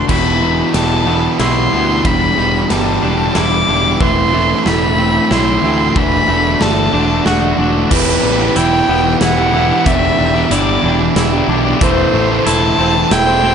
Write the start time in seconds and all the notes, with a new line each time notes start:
0.08 E1 E2 B2 E3 B3 E4 G4 B5, kick, crash
0.41 E2 B2 E3 B3 E4 G4
0.74 E1 E2 B2 E3 G3 B3 E4 G4 A5, snare, ride
1.06 E2 B2 E3 B3 E4 G4
1.39 B1 E2 B2 E3 B3 E4 G4 C6, snare, ride
1.71 D2 E2 B2 E3 B3 E4 G4
2.04 E1 E2 G2 D3 E3 G3 B3 D4 G4 B5, kick, ride
2.36 E1 G2 B2 D3 E3 G3 B3 D4 G4
2.69 G1 G2 D3 E3 G3 B3 D4 G4 A5, snare, ride
3.02 E1 G2 D3 E3 G3 B3 D4 G4
3.35 E1 G2 D3 E3 G3 B3 D4 E4 G4 D6, snare, ride
3.67 E1 G2 D3 E3 G3 B3 D4 G4
3.99 E1 A2 E3 A3 C4 E4 C6, kick
4.32 A2 E3 A3 C4 E4
4.65 E1 A2 E3 A3 C4 E4 B5, snare
4.97 A2 E3 A3 C4 E4
5.30 B1 A2 E3 A3 C4 E4 C6, snare
5.63 D2 A2 E3 A3 C4 E4
5.95 E1 D3 E3 A3 D4 F#4 B5, kick
6.28 E1 D3 E3 A3 D4 F#4
6.60 G1 D3 E3 A3 D4 F#4 A5, snare
6.93 E1 D3 E3 A3 D4 F#4
7.25 E1 D3 E3 A3 D4 F#4 F#5, snare
7.58 E1 D3 E3 A3 D4 F#4
7.90 E1 E2 E3 B3 E4 G4 B4, kick, crash
8.23 A1 E3 G3 B3 E4 G4
8.39 B3 E4 G4
8.55 E1 E3 B3 E4 G4 G5, closed hi-hat
8.87 E1 E3 B3 E4 G4
9.04 B3 E4 G4, muted overdriven electric guitar stroke
9.21 E1 E4 F#5, snare, closed hi-hat
9.37 B3 E4 G4
9.52 E3 B3 E4 G4
9.69 B3 E4 G4
9.85 E1 E2 E3 B3 D4 G4 E5, kick, closed hi-hat
10.17 E1 E3 G3 B3 D4 G4
10.33 B3 D4 G4
10.49 G1 E3 B3 D4 E4 G4 D5, closed hi-hat
10.82 E1 E3 B3 D4 G4
10.98 B3 D4 G4, muted overdriven electric guitar stroke
11.16 E1 E4, snare, closed hi-hat
11.32 B3 D4 G4
11.48 B1 E3 B3 D4 G4
11.64 B3 D4 G4
11.80 E1 E3 A3 E4 A4 C5, kick, closed hi-hat
12.13 A1 A3 E4 A4 C5
12.30 E4 A4 C5
12.45 E1 E3 A3 E4 A4 C5 A5, closed hi-hat
12.78 E1 A3 C4 E4 A4 C5
12.95 E4 A4 C5, muted overdriven electric guitar stroke
13.11 E1 E4 G5, snare, closed hi-hat
13.27 E4 A4 C5
13.43 A3 C4 E4 A4 C5